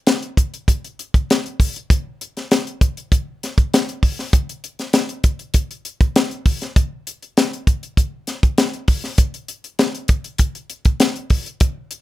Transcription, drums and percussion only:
0.07 snare, closed hi-hat
0.22 closed hi-hat
0.37 kick, closed hi-hat
0.54 closed hi-hat
0.68 kick, closed hi-hat
0.84 closed hi-hat
0.99 closed hi-hat
1.14 kick, closed hi-hat
1.30 snare, closed hi-hat
1.46 closed hi-hat
1.60 kick, open hi-hat
1.76 closed hi-hat
1.90 kick, closed hi-hat
2.21 closed hi-hat
2.37 snare, closed hi-hat
2.51 snare, closed hi-hat
2.67 closed hi-hat
2.81 kick, closed hi-hat
2.97 closed hi-hat
3.12 kick, closed hi-hat
3.43 snare, closed hi-hat
3.58 kick, closed hi-hat
3.74 snare, closed hi-hat
3.89 closed hi-hat
4.03 kick, open hi-hat
4.19 snare
4.33 kick, closed hi-hat
4.49 closed hi-hat
4.64 closed hi-hat
4.79 snare, closed hi-hat
4.93 snare, closed hi-hat
5.09 closed hi-hat
5.24 kick, closed hi-hat
5.39 closed hi-hat
5.54 kick, closed hi-hat
5.71 closed hi-hat
5.85 closed hi-hat
6.01 kick, closed hi-hat
6.16 snare, closed hi-hat
6.31 closed hi-hat
6.46 kick, open hi-hat
6.61 snare, closed hi-hat
6.76 kick, closed hi-hat
7.07 closed hi-hat
7.22 closed hi-hat
7.37 snare, closed hi-hat
7.53 closed hi-hat
7.67 kick, closed hi-hat
7.83 closed hi-hat
7.97 kick, closed hi-hat
8.27 snare, closed hi-hat
8.43 kick, closed hi-hat
8.58 snare, closed hi-hat
8.74 closed hi-hat
8.88 kick, open hi-hat
9.04 snare
9.18 kick, closed hi-hat
9.34 closed hi-hat
9.48 closed hi-hat
9.64 closed hi-hat
9.79 snare, closed hi-hat
9.95 closed hi-hat
10.08 kick, closed hi-hat
10.24 closed hi-hat
10.38 kick, closed hi-hat
10.55 closed hi-hat
10.70 closed hi-hat
10.85 kick, closed hi-hat
11.00 snare, closed hi-hat
11.16 closed hi-hat
11.30 kick, open hi-hat
11.46 closed hi-hat
11.60 kick, closed hi-hat
11.91 closed hi-hat

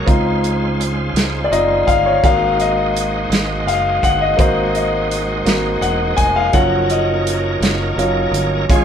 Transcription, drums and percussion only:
0.08 kick, closed hi-hat
0.44 closed hi-hat
0.81 closed hi-hat
1.16 snare, closed hi-hat
1.53 closed hi-hat
1.88 kick, closed hi-hat
2.24 kick, closed hi-hat
2.60 closed hi-hat
2.96 closed hi-hat
3.32 snare, closed hi-hat
3.68 closed hi-hat
4.03 kick, closed hi-hat
4.39 kick, closed hi-hat
4.75 closed hi-hat
5.11 closed hi-hat
5.46 snare, closed hi-hat
5.82 closed hi-hat
6.18 kick, closed hi-hat
6.53 kick, closed hi-hat
6.90 closed hi-hat
7.27 closed hi-hat
7.63 snare, closed hi-hat
7.99 closed hi-hat
8.34 closed hi-hat
8.70 kick, closed hi-hat

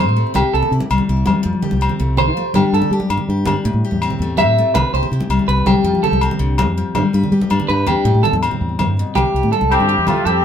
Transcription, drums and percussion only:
0.09 low conga
0.27 low conga
0.35 high conga, low conga, low agogo
0.63 low conga
0.72 low conga
0.80 high conga, low conga
0.90 low conga, low agogo
0.98 low conga
1.17 low conga
1.26 high conga, low conga, low agogo
1.44 low conga
1.53 low conga
1.62 low conga
1.71 high conga
1.82 low agogo
1.89 low conga
1.99 low conga
2.17 low conga, low agogo
2.54 high conga, low conga, low agogo
2.82 low conga
2.91 low conga
3.00 high conga, low conga
3.09 low conga, low agogo
3.18 low conga
3.37 low conga
3.46 high conga, low conga, low agogo
3.64 low conga
3.73 low conga
3.91 high conga
4.02 low agogo
4.10 low conga
4.19 low conga
4.37 high conga, low conga, low agogo
4.75 high conga, low conga, low agogo
5.03 low conga
5.11 low conga
5.20 high conga, low conga
5.30 low conga, low agogo
5.39 low conga
5.58 low conga
5.66 high conga, low conga, low agogo
5.86 low conga
5.95 low conga
6.04 low conga
6.13 high conga
6.21 low agogo
6.31 low conga
6.42 low conga
6.58 high conga, low conga, low agogo
6.95 high conga, low conga, low agogo
7.13 low conga
7.23 low conga
7.42 high conga, low conga
7.51 low agogo
7.60 low conga
7.69 low conga
7.78 low conga
7.87 low conga, low agogo
8.15 low conga
8.24 low conga
8.33 high conga
8.42 low conga, low agogo
8.51 low conga
8.69 low conga
8.79 high conga, low conga, low agogo
8.97 low conga
9.07 low conga
9.15 high conga, low conga, low agogo
9.25 low conga
9.43 low conga
9.53 low conga
9.61 high conga
9.71 low agogo
9.80 low conga
9.98 low conga
10.07 high conga, low conga, low agogo
10.16 low conga

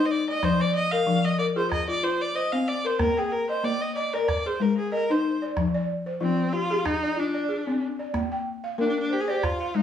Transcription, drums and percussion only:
0.28 calabash click
0.43 calabash thump, calabash click
1.72 calabash thump, calabash click
2.85 calabash click
2.99 calabash thump, calabash click
3.17 calabash click
3.64 calabash click
3.96 calabash click
4.29 calabash thump, calabash click
5.11 calabash click
5.57 calabash thump, calabash click
6.86 calabash thump, calabash click
8.00 calabash click
8.14 calabash thump, calabash click
9.43 calabash thump, calabash click

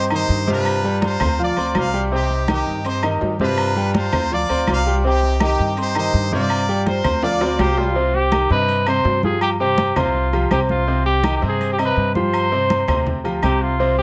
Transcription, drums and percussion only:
0.10 high conga, low agogo, claves
0.29 high conga
0.47 high conga
0.65 high conga, low agogo, claves
0.84 high conga
1.02 high conga, low agogo
1.20 high conga, low conga, low agogo, claves
1.39 high conga
1.57 high conga, low agogo
1.75 high conga, low timbale, low agogo, claves
2.12 high conga
2.30 high conga
2.48 high conga, low agogo, claves
2.67 high conga
2.85 high conga, low agogo
3.03 high conga, low agogo, claves
3.21 high conga, low timbale
3.39 high conga
3.58 high conga, low agogo, claves
3.76 high conga
3.94 high conga, low agogo
4.13 high conga, low conga, low agogo, claves
4.31 high conga
4.49 high conga, low agogo
4.67 high conga, low timbale, low agogo, claves
5.04 high conga
5.22 high conga
5.40 high conga, low agogo, claves
5.59 high conga
5.77 high conga, low agogo
5.95 high conga, low agogo, claves
6.14 high conga
6.32 high conga
6.50 high conga, low agogo, claves
6.68 high conga
6.86 high conga, low agogo
7.04 high conga, low conga, low agogo, claves
7.23 high conga, high timbale
7.41 high conga, low timbale, low agogo
7.59 high conga, low timbale, low agogo, claves
7.77 low timbale
7.95 high conga
8.14 high conga
8.32 high conga, low agogo, claves
8.50 high conga
8.68 high conga, low agogo
8.86 high conga, low agogo, claves
9.05 high conga, low timbale
9.23 high conga
9.41 high conga, low agogo, claves
9.60 high conga
9.78 high conga, low agogo
9.96 high conga, low conga, low agogo, claves
10.14 high conga
10.33 high conga, low agogo
10.51 high conga, low agogo, claves
10.69 high conga
10.88 high conga
11.06 high conga
11.24 high conga, low agogo, claves
11.42 high conga
11.60 high conga, low agogo
11.78 high conga, low agogo, claves
11.97 high conga
12.15 high conga
12.33 high conga, low agogo, claves
12.52 high conga
12.70 high conga, low agogo
12.88 high conga, low conga, low agogo, claves
13.06 high conga, low conga
13.25 high conga, low agogo
13.43 high conga, low agogo, claves
13.80 high conga
13.98 high conga

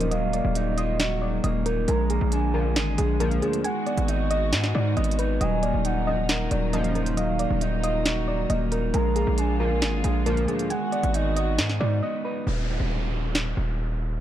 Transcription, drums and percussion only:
0.00 closed hi-hat
0.11 closed hi-hat
0.33 closed hi-hat
0.55 closed hi-hat
0.78 closed hi-hat
1.00 snare, closed hi-hat
1.44 closed hi-hat
1.66 closed hi-hat
1.88 closed hi-hat
2.10 closed hi-hat
2.32 closed hi-hat
2.76 snare, closed hi-hat
2.98 closed hi-hat
3.20 closed hi-hat
3.31 closed hi-hat
3.42 closed hi-hat
3.53 closed hi-hat
3.64 closed hi-hat
3.87 closed hi-hat
3.98 closed hi-hat
4.08 closed hi-hat
4.31 closed hi-hat
4.53 snare, closed hi-hat
4.64 snare
4.97 closed hi-hat
5.04 closed hi-hat
5.11 closed hi-hat
5.19 closed hi-hat
5.41 closed hi-hat
5.63 closed hi-hat
5.85 closed hi-hat
6.29 snare, closed hi-hat
6.51 closed hi-hat
6.73 closed hi-hat
6.84 closed hi-hat
6.95 closed hi-hat
7.06 closed hi-hat
7.17 closed hi-hat
7.39 closed hi-hat
7.61 closed hi-hat
7.84 closed hi-hat
8.06 snare, closed hi-hat
8.50 closed hi-hat
8.72 closed hi-hat
8.94 closed hi-hat
9.16 closed hi-hat
9.38 closed hi-hat
9.82 snare, closed hi-hat
10.04 closed hi-hat
10.26 closed hi-hat
10.37 closed hi-hat
10.48 closed hi-hat
10.59 closed hi-hat
10.70 closed hi-hat
10.92 closed hi-hat
11.03 closed hi-hat
11.14 closed hi-hat
11.36 closed hi-hat
11.58 snare, closed hi-hat
11.69 snare
13.35 snare

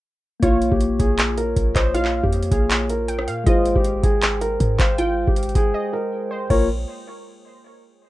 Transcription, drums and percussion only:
0.43 kick, closed hi-hat
0.62 closed hi-hat
0.72 kick
0.81 closed hi-hat
1.00 kick, closed hi-hat
1.19 clap, closed hi-hat
1.38 closed hi-hat
1.56 kick, closed hi-hat
1.76 kick, clap, closed hi-hat
1.95 closed hi-hat
2.05 clap
2.24 kick
2.33 closed hi-hat
2.43 closed hi-hat
2.52 kick, closed hi-hat
2.71 clap, closed hi-hat
2.90 closed hi-hat
3.08 closed hi-hat
3.19 cross-stick
3.28 closed hi-hat
3.47 kick, closed hi-hat
3.66 closed hi-hat
3.76 kick
3.84 closed hi-hat
4.03 kick, closed hi-hat
4.22 clap, closed hi-hat
4.41 closed hi-hat
4.60 kick, closed hi-hat
4.79 kick, clap, closed hi-hat
4.98 closed hi-hat
5.28 kick
5.36 closed hi-hat
5.43 closed hi-hat
5.49 closed hi-hat
5.55 kick, closed hi-hat
6.50 kick, crash

